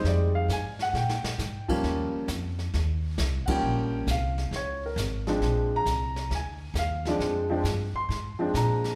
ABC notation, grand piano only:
X:1
M:4/4
L:1/8
Q:"Swing" 1/4=134
K:Bbmix
V:1 name="Grand piano"
d f a _g =g3 z | z6 z [_g=g]- | [_g=g]2 f2 _d B z2 | z b3 a2 f d |
z3 c'3 b2 |]
V:2 name="Grand piano"
[G,A,CE]2 z4 z [F,G,B,_D]- | [F,G,B,_D]2 z4 z [F,G,B,D]- | [F,G,B,_D]2 z4 z [F,A,C=D]- | [F,A,CD]2 z4 z [F,A,CD]- |
[F,A,CD] [F,A,CD] z3 [F,A,CD]3 |]